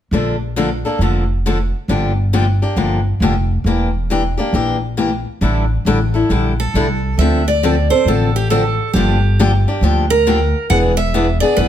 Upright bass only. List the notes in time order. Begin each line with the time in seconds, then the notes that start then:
0.11 A#1
0.99 F1
1.88 G1
2.76 G1
3.20 F1
3.64 E1
4.53 A#1
5.41 A1
5.85 A1
6.29 A#1
6.74 C2
7.17 D2
8.05 A1
8.93 G1
9.81 D2
10.70 E1
11.57 B1